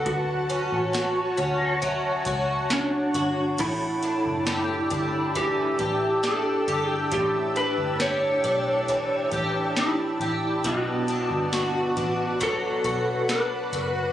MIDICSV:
0, 0, Header, 1, 7, 480
1, 0, Start_track
1, 0, Tempo, 882353
1, 30, Time_signature, 4, 2, 24, 8
1, 7685, End_track
2, 0, Start_track
2, 0, Title_t, "Ambient pad"
2, 0, Program_c, 0, 92
2, 0, Note_on_c, 0, 78, 82
2, 0, Note_on_c, 0, 81, 79
2, 37, Note_on_c, 0, 73, 82
2, 1932, Note_off_c, 0, 78, 0
2, 1932, Note_off_c, 0, 81, 0
2, 1934, Note_off_c, 0, 73, 0
2, 1954, Note_on_c, 0, 81, 72
2, 1955, Note_on_c, 0, 62, 83
2, 1956, Note_on_c, 0, 79, 82
2, 1956, Note_on_c, 0, 88, 101
2, 5771, Note_off_c, 0, 62, 0
2, 5771, Note_off_c, 0, 79, 0
2, 5771, Note_off_c, 0, 88, 0
2, 5793, Note_on_c, 0, 78, 79
2, 5796, Note_on_c, 0, 71, 88
2, 6730, Note_off_c, 0, 81, 0
2, 6745, Note_on_c, 0, 83, 63
2, 7685, Note_off_c, 0, 71, 0
2, 7685, Note_off_c, 0, 78, 0
2, 7685, Note_off_c, 0, 83, 0
2, 7685, End_track
3, 0, Start_track
3, 0, Title_t, "Vibraphone"
3, 0, Program_c, 1, 11
3, 0, Note_on_c, 1, 78, 48
3, 170, Note_off_c, 1, 78, 0
3, 988, Note_on_c, 1, 76, 76
3, 1609, Note_off_c, 1, 76, 0
3, 7685, End_track
4, 0, Start_track
4, 0, Title_t, "Electric slide guitar"
4, 0, Program_c, 2, 29
4, 34, Note_on_c, 2, 66, 82
4, 970, Note_off_c, 2, 66, 0
4, 1484, Note_on_c, 2, 62, 86
4, 1935, Note_off_c, 2, 62, 0
4, 1960, Note_on_c, 2, 64, 86
4, 2921, Note_on_c, 2, 67, 95
4, 2944, Note_off_c, 2, 64, 0
4, 3399, Note_on_c, 2, 69, 97
4, 3410, Note_off_c, 2, 67, 0
4, 3748, Note_off_c, 2, 69, 0
4, 3748, Note_on_c, 2, 67, 97
4, 3879, Note_off_c, 2, 67, 0
4, 3881, Note_on_c, 2, 67, 99
4, 4118, Note_on_c, 2, 71, 97
4, 4123, Note_off_c, 2, 67, 0
4, 4338, Note_off_c, 2, 71, 0
4, 4360, Note_on_c, 2, 73, 105
4, 5053, Note_off_c, 2, 73, 0
4, 5324, Note_on_c, 2, 64, 84
4, 5801, Note_off_c, 2, 64, 0
4, 5803, Note_on_c, 2, 66, 93
4, 6763, Note_on_c, 2, 69, 108
4, 6785, Note_off_c, 2, 66, 0
4, 7240, Note_off_c, 2, 69, 0
4, 7242, Note_on_c, 2, 71, 103
4, 7685, Note_off_c, 2, 71, 0
4, 7685, End_track
5, 0, Start_track
5, 0, Title_t, "Twelve-string acoustic guitar"
5, 0, Program_c, 3, 25
5, 0, Note_on_c, 3, 54, 73
5, 0, Note_on_c, 3, 62, 65
5, 0, Note_on_c, 3, 66, 74
5, 267, Note_off_c, 3, 62, 0
5, 269, Note_on_c, 3, 61, 61
5, 505, Note_off_c, 3, 66, 0
5, 507, Note_on_c, 3, 66, 66
5, 741, Note_off_c, 3, 61, 0
5, 747, Note_on_c, 3, 61, 66
5, 974, Note_off_c, 3, 54, 0
5, 989, Note_on_c, 3, 54, 69
5, 1225, Note_off_c, 3, 66, 0
5, 1232, Note_on_c, 3, 66, 70
5, 1469, Note_off_c, 3, 61, 0
5, 1707, Note_off_c, 3, 66, 0
5, 1713, Note_on_c, 3, 66, 72
5, 1953, Note_on_c, 3, 45, 87
5, 1997, Note_off_c, 3, 54, 0
5, 2000, Note_off_c, 3, 66, 0
5, 2192, Note_on_c, 3, 62, 61
5, 2430, Note_on_c, 3, 67, 69
5, 2668, Note_off_c, 3, 62, 0
5, 2670, Note_on_c, 3, 62, 61
5, 2912, Note_on_c, 3, 52, 73
5, 3143, Note_off_c, 3, 67, 0
5, 3149, Note_on_c, 3, 67, 59
5, 3387, Note_off_c, 3, 62, 0
5, 3389, Note_on_c, 3, 62, 60
5, 3627, Note_off_c, 3, 67, 0
5, 3634, Note_on_c, 3, 67, 68
5, 3865, Note_off_c, 3, 45, 0
5, 3871, Note_on_c, 3, 45, 76
5, 4109, Note_off_c, 3, 62, 0
5, 4111, Note_on_c, 3, 62, 64
5, 4347, Note_off_c, 3, 67, 0
5, 4353, Note_on_c, 3, 67, 64
5, 4591, Note_off_c, 3, 62, 0
5, 4593, Note_on_c, 3, 62, 68
5, 4828, Note_off_c, 3, 52, 0
5, 4835, Note_on_c, 3, 52, 75
5, 5066, Note_off_c, 3, 67, 0
5, 5073, Note_on_c, 3, 67, 68
5, 5313, Note_off_c, 3, 62, 0
5, 5315, Note_on_c, 3, 62, 64
5, 5546, Note_off_c, 3, 67, 0
5, 5553, Note_on_c, 3, 67, 70
5, 5791, Note_off_c, 3, 45, 0
5, 5791, Note_on_c, 3, 47, 88
5, 5839, Note_off_c, 3, 67, 0
5, 5840, Note_off_c, 3, 52, 0
5, 6032, Note_off_c, 3, 62, 0
5, 6034, Note_on_c, 3, 62, 59
5, 6271, Note_on_c, 3, 66, 65
5, 6509, Note_off_c, 3, 62, 0
5, 6511, Note_on_c, 3, 62, 65
5, 6748, Note_on_c, 3, 54, 77
5, 6988, Note_off_c, 3, 66, 0
5, 6990, Note_on_c, 3, 66, 66
5, 7229, Note_off_c, 3, 62, 0
5, 7231, Note_on_c, 3, 62, 69
5, 7469, Note_off_c, 3, 66, 0
5, 7471, Note_on_c, 3, 66, 67
5, 7685, Note_off_c, 3, 47, 0
5, 7685, Note_off_c, 3, 54, 0
5, 7685, Note_off_c, 3, 62, 0
5, 7685, Note_off_c, 3, 66, 0
5, 7685, End_track
6, 0, Start_track
6, 0, Title_t, "Picked electric bass"
6, 0, Program_c, 4, 34
6, 33, Note_on_c, 4, 38, 97
6, 373, Note_off_c, 4, 38, 0
6, 393, Note_on_c, 4, 33, 84
6, 733, Note_off_c, 4, 33, 0
6, 752, Note_on_c, 4, 38, 82
6, 1209, Note_off_c, 4, 38, 0
6, 1230, Note_on_c, 4, 37, 79
6, 1688, Note_off_c, 4, 37, 0
6, 1711, Note_on_c, 4, 31, 88
6, 1938, Note_off_c, 4, 31, 0
6, 1950, Note_on_c, 4, 33, 99
6, 2292, Note_off_c, 4, 33, 0
6, 2314, Note_on_c, 4, 30, 79
6, 2654, Note_off_c, 4, 30, 0
6, 2672, Note_on_c, 4, 31, 78
6, 3129, Note_off_c, 4, 31, 0
6, 3150, Note_on_c, 4, 33, 98
6, 3608, Note_off_c, 4, 33, 0
6, 3632, Note_on_c, 4, 31, 95
6, 3859, Note_off_c, 4, 31, 0
6, 3873, Note_on_c, 4, 33, 117
6, 4214, Note_off_c, 4, 33, 0
6, 4230, Note_on_c, 4, 31, 79
6, 4572, Note_off_c, 4, 31, 0
6, 4592, Note_on_c, 4, 35, 89
6, 5049, Note_off_c, 4, 35, 0
6, 5071, Note_on_c, 4, 33, 92
6, 5528, Note_off_c, 4, 33, 0
6, 5550, Note_on_c, 4, 33, 101
6, 5778, Note_off_c, 4, 33, 0
6, 5790, Note_on_c, 4, 35, 102
6, 6132, Note_off_c, 4, 35, 0
6, 6149, Note_on_c, 4, 31, 86
6, 6492, Note_off_c, 4, 31, 0
6, 6510, Note_on_c, 4, 33, 83
6, 6968, Note_off_c, 4, 33, 0
6, 6988, Note_on_c, 4, 35, 97
6, 7447, Note_off_c, 4, 35, 0
6, 7467, Note_on_c, 4, 30, 98
6, 7685, Note_off_c, 4, 30, 0
6, 7685, End_track
7, 0, Start_track
7, 0, Title_t, "Drums"
7, 32, Note_on_c, 9, 36, 121
7, 32, Note_on_c, 9, 42, 86
7, 86, Note_off_c, 9, 36, 0
7, 87, Note_off_c, 9, 42, 0
7, 271, Note_on_c, 9, 42, 50
7, 326, Note_off_c, 9, 42, 0
7, 514, Note_on_c, 9, 38, 98
7, 514, Note_on_c, 9, 42, 60
7, 515, Note_on_c, 9, 54, 64
7, 568, Note_off_c, 9, 38, 0
7, 568, Note_off_c, 9, 42, 0
7, 570, Note_off_c, 9, 54, 0
7, 750, Note_on_c, 9, 42, 53
7, 804, Note_off_c, 9, 42, 0
7, 992, Note_on_c, 9, 42, 63
7, 993, Note_on_c, 9, 36, 89
7, 1047, Note_off_c, 9, 36, 0
7, 1047, Note_off_c, 9, 42, 0
7, 1225, Note_on_c, 9, 42, 49
7, 1229, Note_on_c, 9, 36, 105
7, 1279, Note_off_c, 9, 42, 0
7, 1284, Note_off_c, 9, 36, 0
7, 1470, Note_on_c, 9, 38, 99
7, 1470, Note_on_c, 9, 54, 59
7, 1473, Note_on_c, 9, 42, 77
7, 1524, Note_off_c, 9, 54, 0
7, 1525, Note_off_c, 9, 38, 0
7, 1527, Note_off_c, 9, 42, 0
7, 1710, Note_on_c, 9, 42, 52
7, 1765, Note_off_c, 9, 42, 0
7, 1950, Note_on_c, 9, 42, 89
7, 1950, Note_on_c, 9, 49, 97
7, 1951, Note_on_c, 9, 36, 114
7, 2004, Note_off_c, 9, 42, 0
7, 2004, Note_off_c, 9, 49, 0
7, 2005, Note_off_c, 9, 36, 0
7, 2190, Note_on_c, 9, 42, 48
7, 2244, Note_off_c, 9, 42, 0
7, 2430, Note_on_c, 9, 38, 91
7, 2430, Note_on_c, 9, 42, 65
7, 2431, Note_on_c, 9, 54, 55
7, 2484, Note_off_c, 9, 38, 0
7, 2484, Note_off_c, 9, 42, 0
7, 2485, Note_off_c, 9, 54, 0
7, 2668, Note_on_c, 9, 42, 48
7, 2670, Note_on_c, 9, 36, 85
7, 2723, Note_off_c, 9, 42, 0
7, 2724, Note_off_c, 9, 36, 0
7, 2913, Note_on_c, 9, 36, 85
7, 2913, Note_on_c, 9, 42, 66
7, 2967, Note_off_c, 9, 36, 0
7, 2968, Note_off_c, 9, 42, 0
7, 3149, Note_on_c, 9, 42, 53
7, 3150, Note_on_c, 9, 36, 105
7, 3204, Note_off_c, 9, 42, 0
7, 3205, Note_off_c, 9, 36, 0
7, 3392, Note_on_c, 9, 54, 54
7, 3393, Note_on_c, 9, 38, 92
7, 3395, Note_on_c, 9, 42, 77
7, 3446, Note_off_c, 9, 54, 0
7, 3447, Note_off_c, 9, 38, 0
7, 3449, Note_off_c, 9, 42, 0
7, 3634, Note_on_c, 9, 42, 46
7, 3688, Note_off_c, 9, 42, 0
7, 3871, Note_on_c, 9, 42, 86
7, 3872, Note_on_c, 9, 36, 106
7, 3925, Note_off_c, 9, 42, 0
7, 3926, Note_off_c, 9, 36, 0
7, 4113, Note_on_c, 9, 42, 54
7, 4167, Note_off_c, 9, 42, 0
7, 4351, Note_on_c, 9, 38, 91
7, 4351, Note_on_c, 9, 42, 60
7, 4352, Note_on_c, 9, 54, 65
7, 4406, Note_off_c, 9, 38, 0
7, 4406, Note_off_c, 9, 42, 0
7, 4407, Note_off_c, 9, 54, 0
7, 4591, Note_on_c, 9, 42, 51
7, 4645, Note_off_c, 9, 42, 0
7, 4833, Note_on_c, 9, 36, 78
7, 4833, Note_on_c, 9, 42, 62
7, 4887, Note_off_c, 9, 42, 0
7, 4888, Note_off_c, 9, 36, 0
7, 5068, Note_on_c, 9, 42, 53
7, 5070, Note_on_c, 9, 36, 98
7, 5122, Note_off_c, 9, 42, 0
7, 5125, Note_off_c, 9, 36, 0
7, 5312, Note_on_c, 9, 38, 111
7, 5312, Note_on_c, 9, 54, 59
7, 5314, Note_on_c, 9, 42, 76
7, 5366, Note_off_c, 9, 54, 0
7, 5367, Note_off_c, 9, 38, 0
7, 5369, Note_off_c, 9, 42, 0
7, 5554, Note_on_c, 9, 42, 46
7, 5608, Note_off_c, 9, 42, 0
7, 5790, Note_on_c, 9, 36, 109
7, 5790, Note_on_c, 9, 42, 88
7, 5844, Note_off_c, 9, 42, 0
7, 5845, Note_off_c, 9, 36, 0
7, 6029, Note_on_c, 9, 42, 46
7, 6083, Note_off_c, 9, 42, 0
7, 6271, Note_on_c, 9, 38, 99
7, 6271, Note_on_c, 9, 42, 55
7, 6273, Note_on_c, 9, 54, 61
7, 6326, Note_off_c, 9, 38, 0
7, 6326, Note_off_c, 9, 42, 0
7, 6327, Note_off_c, 9, 54, 0
7, 6509, Note_on_c, 9, 36, 80
7, 6511, Note_on_c, 9, 42, 54
7, 6564, Note_off_c, 9, 36, 0
7, 6565, Note_off_c, 9, 42, 0
7, 6751, Note_on_c, 9, 36, 96
7, 6751, Note_on_c, 9, 42, 71
7, 6805, Note_off_c, 9, 36, 0
7, 6805, Note_off_c, 9, 42, 0
7, 6987, Note_on_c, 9, 42, 49
7, 6988, Note_on_c, 9, 36, 100
7, 7041, Note_off_c, 9, 42, 0
7, 7042, Note_off_c, 9, 36, 0
7, 7229, Note_on_c, 9, 54, 62
7, 7230, Note_on_c, 9, 38, 100
7, 7232, Note_on_c, 9, 42, 75
7, 7284, Note_off_c, 9, 38, 0
7, 7284, Note_off_c, 9, 54, 0
7, 7287, Note_off_c, 9, 42, 0
7, 7469, Note_on_c, 9, 42, 51
7, 7523, Note_off_c, 9, 42, 0
7, 7685, End_track
0, 0, End_of_file